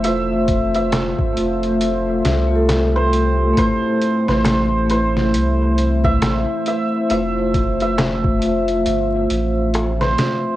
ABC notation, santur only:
X:1
M:4/4
L:1/16
Q:"Swing 16ths" 1/4=68
K:Flyd
V:1 name="Santur"
e3 e3 z6 z c3 | c3 c3 c2 z3 e3 e2 | e3 e3 z6 z c3 |]